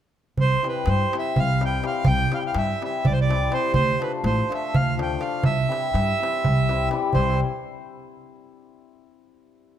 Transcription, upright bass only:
0.37 C2
0.87 G2
1.36 C2
2.06 C2
2.55 G2
3.05 C2
3.74 D2
4.24 A1
4.74 D2
5.44 C2
5.94 G2
6.45 C2
7.14 C2

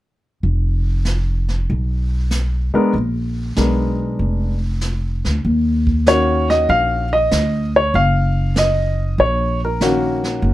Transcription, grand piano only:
2.74 G#3 B3 D4 A#4
3.57 G#3 B3 D4 A#4
6.07 D#3 A#3 C#4 F#4 C#5
6.50 D#5
6.70 F5
7.13 D#5
7.76 C#5
7.95 F5
8.58 D#5
9.20 C#5
9.65 A#4
9.81 D#3 A#3 C#4 F#4

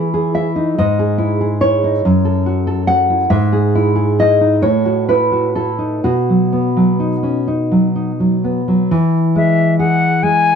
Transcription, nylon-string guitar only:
Already playing: E3 E4 B4
0.14 G#4
0.34 E4 E5
0.56 D#4
0.78 G#2 D#5
0.99 G#4
1.18 E4
1.41 G#4
1.61 E4 C#5
1.84 D#4
2.05 F#2
2.25 A4
2.46 F#4
2.67 A4
2.87 F#4 F#5
3.10 E4
3.30 G#2 E5
3.53 G#4
3.75 E4
3.95 G#4
4.19 E4 D#5
4.41 D#4
4.62 A2 C#5
4.85 F#4
5.09 E4 B4
5.32 F#4
5.55 E4 A4
5.79 D#4
6.04 B2 F#4
6.30 F#3
6.52 B3
6.77 F#3
7.00 D#4
7.23 C#4
7.48 D#4
7.72 F#3
7.96 D#4
8.20 F#3
8.44 B3
8.68 F#3
8.91 E3
9.36 G#3
9.79 G#4
10.23 G#3

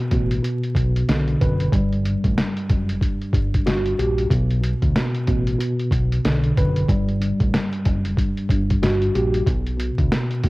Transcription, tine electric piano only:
Already playing: B2
0.11 B2
0.42 B2
0.75 B2
1.08 D3
1.41 B4
1.72 G3
2.04 G2
3.01 G2
3.35 G2
3.66 F#4
3.99 G4
4.30 B2
4.61 B2
4.95 B2
5.28 B2
5.59 B2
5.91 B2
6.25 D3
6.58 B4
6.89 G3
7.20 G2
8.18 G2
8.51 G2
8.82 F#4
9.15 G4
9.46 B2
9.78 B2
10.12 B2
10.44 B2

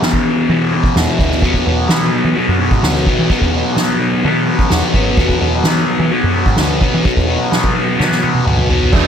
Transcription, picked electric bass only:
0.49 E3
0.96 E2
1.19 D2
1.42 E2
1.67 E2
1.90 E3
2.25 E3
2.49 F#2
2.71 G#2
2.83 D2
3.19 E3
3.42 E2
4.25 E3
4.72 E2
4.94 G#1
5.18 E2
5.41 E2
5.65 E3
6.00 E3
6.24 F#2
6.46 G#2
6.58 D2
6.94 E3
7.17 E2
8.00 E3
8.47 D2
8.71 E2
8.93 E1

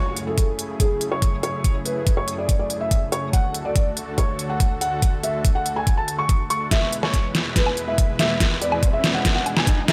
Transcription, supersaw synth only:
Already playing: F#2 C#3 A3 E4 G#4
3.33 D2 D3 F#4 A4
6.71 E2 B2 G#3 E4 B4

